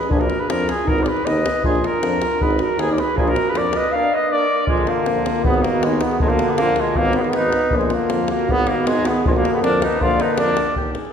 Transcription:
Already playing: G#4 B4
0.03 davul high
0.09 A#1 A#3 D4 F4 G#4, davul low
0.20 F#4 A#4, davul high
0.30 davul high
0.39 G#4 B4
0.48 F2 A#3 D4 F4 A#4, davul high
0.68 F4 G#4, davul high
0.79 davul high
0.85 G#1 B3 D#4 A#4, davul low
0.98 A#4, davul high
1.03 G#4 D5, davul high
1.08 B4
1.17 davul high
1.24 D#2 B3 D#4 B4 D#5, davul high
1.37 davul high
1.46 davul high
1.55 davul high
1.63 A#1 A#3 D4 F4 G#4, davul low
1.75 davul high
1.84 F4 A#4, davul high
2.02 F2 A#3 D4, davul high
2.22 davul high
2.32 davul high
2.40 G#1 B3 D#4 G#4 B4, davul low
2.51 davul high
2.59 F#4, davul high
2.63 A#4
2.77 D#2 B3 D#4 G#4, davul high
2.92 A#4 D5
2.98 G#4 B4, davul high
3.10 davul high
3.15 A#1 A#3 D4 G#4, davul low
3.20 F4
3.28 F#4 A#4, davul high
3.36 davul high
3.49 G#4 B4
3.54 F2 A#3 D4 D5, davul high
3.58 A#4
3.73 D#5, davul high
3.77 B4
3.84 davul high
3.92 A#3 D4 D5 F5
4.14 B4 D#5
4.30 A#3 D4 D5
4.34 A#4
4.67 A#1 D3 G#3 A#3 F4, davul low
4.77 davul high
4.87 A#3 F4, davul high
5.06 A#1, davul high
5.26 davul high
5.36 davul high
5.43 G#1 D#3 B3 G#4, davul low
5.54 davul high
5.62 A#3 F#4, davul high
5.80 D#2 G#3, davul high
5.87 D#4
6.01 B3, davul high
6.06 G#4
6.11 davul high
6.19 A#1 D3 G#3 A#3 F4, davul low
6.29 A#3, davul high
6.34 F#4
6.39 davul high
6.49 B3 G#4
6.57 A#1 A#3, davul high
6.61 F4
6.76 G#3, davul high
6.81 F4
6.87 davul high
6.95 G#1 D#3 A#3 B3, davul low
7.01 D#4
7.05 davul high
7.13 B3, davul high
7.19 A#3 F#4 G#4
7.24 B3 G#4, davul high
7.33 G#1 D#4 B4, davul high
7.44 davul high
7.53 davul high
7.62 davul high
7.71 A#1 D3 A#3, davul low
7.75 G#3 F4
7.81 davul high
7.90 A#3, davul high
7.95 F4
8.10 F2, davul high
8.28 A#3 F#4, davul high
8.39 davul high
8.48 G#1 D#3 B3 G#4, davul low
8.59 davul high
8.67 A#3 F#4, davul high
8.87 G#1 G#3 D#4, davul high
9.05 B3 G#4, davul high
9.16 davul high
9.24 A#1 D3 G#3 A#3 F4, davul low
9.35 A#3 F#4, davul high
9.45 davul high
9.54 B3 G#4
9.61 F2 D4, davul high
9.66 A#4
9.82 D#4 B4, davul high
9.92 davul high
10.00 A#1 D3 A#3 F4 D5, davul low
10.11 davul high
10.20 D#4 B4, davul high
10.38 F2 D4 A#4, davul high
10.49 davul high
10.57 davul high
10.67 davul high
10.76 D#2 G4, davul low
10.94 G#4, davul high
11.05 davul high

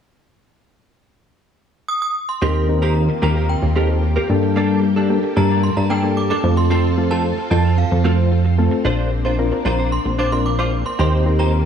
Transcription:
1.88 D#6
2.02 D#6
2.29 C6
2.42 D#2 D#3 A#3 C4 F4 G4 A#4 C6
2.69 C4 D#4 G4 A#4, muted clean electric guitar stroke
2.82 C4 G4 A#4 A#5
2.95 muted clean electric guitar stroke
3.09 muted clean electric guitar stroke
3.22 D#2 C4 G4 A#4 A#5
3.36 C4 G4 A#4
3.49 G4 A#4 G5, muted clean electric guitar stroke
3.62 D#2 G4 A#4, muted clean electric guitar stroke
3.76 C4 D#4 G4 A4 A#4
3.89 muted clean electric guitar stroke
4.03 muted clean electric guitar stroke
4.16 C4 G4 A#4
4.29 G2 A#3 D4 G4 A4, muted clean electric guitar stroke
4.43 muted clean electric guitar stroke
4.56 A#3 D4 A4
4.83 muted clean electric guitar stroke
4.96 A#3 D4 G4 A4
5.10 A#3 D4 G4 A4, muted clean electric guitar stroke
5.23 muted clean electric guitar stroke
5.37 G2 A#3 D4 A4 A#5
5.50 A#3 D4 A4
5.63 C6
5.77 G2 A#5, muted clean electric guitar stroke
5.90 A#3 D4 A4 G5
6.03 A#3 D4 G4 A4, muted clean electric guitar stroke
6.17 D6, muted clean electric guitar stroke
6.30 A#3 D4 A4 D6
6.44 F2 A3 C4 F4 A4, muted clean electric guitar stroke
6.57 C6, muted clean electric guitar stroke
6.70 C4 F4 A4 C6
6.97 A3 C4 F4 A4, muted clean electric guitar stroke
7.11 C4 F4 A4 A5
7.24 muted clean electric guitar stroke
7.38 muted clean electric guitar stroke
7.51 F2 C4 F4 A4 A5
7.64 C4 F4 A4
7.78 F4 A4 F5, muted clean electric guitar stroke
7.91 F2 F4 A4, muted clean electric guitar stroke
8.04 A3 C4 F4 A4 C5
8.18 muted clean electric guitar stroke
8.31 muted clean electric guitar stroke
8.45 muted clean electric guitar stroke
8.58 A3 C4 F4 A4
8.71 muted clean electric guitar stroke
8.85 A#1 A#3 D4 F4 C5
9.12 muted clean electric guitar stroke
9.25 D4 F4 A#4 C5
9.38 C4 D4 F4 A#4, muted clean electric guitar stroke
9.52 muted clean electric guitar stroke
9.65 A#1 D4 F4 C5 A#5
9.78 D4 F4 C5
9.92 C6, muted clean electric guitar stroke
10.05 A#1, muted clean electric guitar stroke
10.19 D4 F4 C5 D6
10.32 C4 D4 F4 A#4 C6, muted clean electric guitar stroke
10.46 D6, muted clean electric guitar stroke
10.59 D4 F4 C5 D6
10.72 muted clean electric guitar stroke
10.86 C6, muted clean electric guitar stroke
10.99 D#2 D#3 D#4 F4 G4 C5 C6
11.26 C4 D#4 G4 A#4, muted clean electric guitar stroke
11.39 D#4 G4 C5 A#5
11.53 muted clean electric guitar stroke

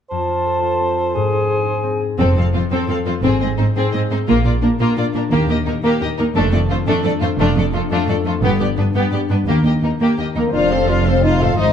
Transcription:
0.10 F2 F4 C5 A5
0.29 F4
0.46 A4
0.63 F4
0.81 C4
0.98 A4
1.14 G#2 G#4 G#5
1.33 D#4
1.50 G#4
1.66 D#4
1.83 C4
2.01 G#4
2.18 F1 F2 C4 A4
2.36 F2 C4 A4 F5
2.54 F2 C4 F4 C5
2.71 F2 C4 A4
2.89 F2 C4 F4 A4 F5
3.06 F2 C4 F4 C5
3.22 G#1 G#2 C4 G#4
3.41 G#2 C4 G#4 D#5
3.58 G#2 C4 D#4 C5
3.75 G#2 C4 G#4
3.92 G#2 C4 D#4 G#4 D#5
4.11 G#2 C4 D#4 C5
4.27 A#1 A#2 A#3 F4
4.44 A#2 A#3 F4 D5
4.62 A#2 A#3 D4 A#4
4.79 A#2 A#3 F4
4.96 A#2 A#3 D4 F4 D5
5.15 A#2 A#3 D4 A#4
5.31 D#2 D#3 A#3 G4
5.49 D#2 A#3 D#4 G4 D#5
5.66 D#2 A#3 D#4 G4 A#4
5.83 D#2 A#3 G4 A#4
6.01 D#2 A#3 G4 D#5
6.18 D#2 A#3 D#4 A#4
6.35 F1 F2 A3 D4 A4
6.52 F2 A3 A4 D5
6.70 F2 A3 D4 F4 C5
6.87 F2 A3 D4 A4
7.04 F2 A3 D4 A4 D5
7.21 F2 A3 F4 C5
7.39 F1 F2 A3 D4 F4
7.56 F2 A3 A4 D5
7.73 F2 A3 D4 F4 A4
7.91 F2 A3 D4 F4 A4
8.08 F2 A3 D4 A4 D5
8.25 F2 A3 F4 A4
8.42 G1 G2 B3 G4
8.59 G2 B3 G4 D5
8.77 G2 B3 D4 B4
8.95 G2 B3 G4
9.11 G2 B3 D4 G4 D5
9.30 G2 B3 D4 B4
9.47 D#2 D#3 A#3 G4
9.64 D#2 A#3 D#4 G4 D#5
9.83 D#2 A#3 D#4 G4 A#4
10.00 D#2 A#3 G4 A#4
10.18 D#2 A#3 G4 D#5
10.35 D#2 F3 A#3 D#4 A#4
10.40 A3
10.44 C4
10.49 D4 C5
10.53 F1 F2 F4 C5 F5
10.71 C4 A4 C5 F5
10.88 D4 F4 C5 F5
11.05 C4 A4 C5 F5
11.23 D#4 F4 C5 F5
11.40 G#2 F4 A4 C5 F5
11.44 G#3
11.49 C4
11.53 C5
11.58 G#1 G#2 D#4 C5 D#5

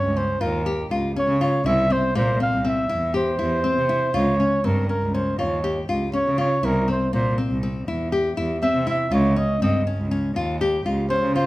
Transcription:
Already playing: C#4 C#5
0.04 C#2
0.17 C#4 C5
0.41 D#2 F4 A#4
0.66 G4
0.91 C#2 F4
1.16 C#4 C#5
1.28 C#3
1.41 F4 C#5
1.65 C2 E4 E5
1.90 C4 C5
2.15 A#2 A#3 C5
2.40 C4 F5
2.53 C2
2.65 C4 E5
2.89 E2 E4
3.14 G4 C5
3.39 E2 E4
3.64 C4
3.78 C3
3.89 E4
4.14 C#2 F4 C#5
4.40 C#4
4.64 G2 C4 A#4
4.89 C#4 A#4
5.02 C#2
5.14 C#4 C5
5.39 D#2 F4 C#5
5.64 G4
5.89 C#2 F4
6.13 C#4 C#5
6.26 C#3
6.38 F4 C#5
6.63 C2 E4 A#4
6.88 C4 C5
7.13 A#2 A#3 C5
7.38 C4
7.51 C2
7.63 C4
7.87 E2 E4
8.12 G4
8.37 E2 E4
8.62 C4 E5
8.75 C3
8.87 E4 E5
9.11 C#2 F4 C#5
9.36 C#4 D#5
9.61 G2 C4 D#5
9.87 C#4
9.98 C#2
10.11 C#4
10.35 D#2 F4
10.61 G4
10.85 C#2 F4
11.10 C#4 C5
11.22 C#3
11.35 F4 C5

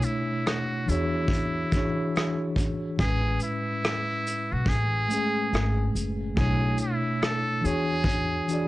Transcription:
Already playing: B2 A3 D4 E4 C#5
0.02 E4, shaker
0.46 F#4, cross-stick, closed hi-hat
0.86 E2 E3 D4 E4 F#4, closed hi-hat, shaker
0.90 G#4 C#5
1.28 kick
1.33 closed hi-hat
1.72 E3 D4 F#4, kick, shaker
1.76 G#4 C#5
2.15 cross-stick, closed hi-hat
2.56 kick, shaker
2.97 A1 A2 G#3 C#4 G#4, kick, closed hi-hat
3.03 B4
3.40 E4, shaker
3.84 cross-stick, closed hi-hat
4.27 closed hi-hat, shaker
4.52 B1 F#4
4.66 A1 G#4, kick
4.71 closed hi-hat
5.08 G#3 A3 C#4, shaker
5.14 G#4
5.53 G#1, cross-stick, closed hi-hat
5.95 F#1, shaker
6.35 B1 B2 A3 D4 G#4, kick, closed hi-hat
6.39 E4 C#5
6.78 E4, shaker
7.22 A4, cross-stick, closed hi-hat
7.61 E2 E3 D4 F#4, shaker
7.65 G#4 C#5
8.04 kick
8.09 closed hi-hat
8.48 E3 D4 F#4, shaker
8.52 G#4 D5

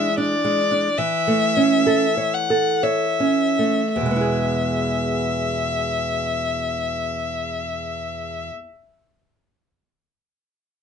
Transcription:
Already playing: E3 G#3 E5
0.18 D4 D5
0.44 G#3
0.71 D4
0.98 E3 E5
1.27 A3
1.57 C#4
1.87 A4
2.17 C#5
2.34 F#5
2.50 A4
2.83 C#5 E5
3.20 C#4
3.59 A3
3.94 E2 E5
4.01 B2
4.06 G#3
4.11 B3
4.16 E4
4.21 G#4

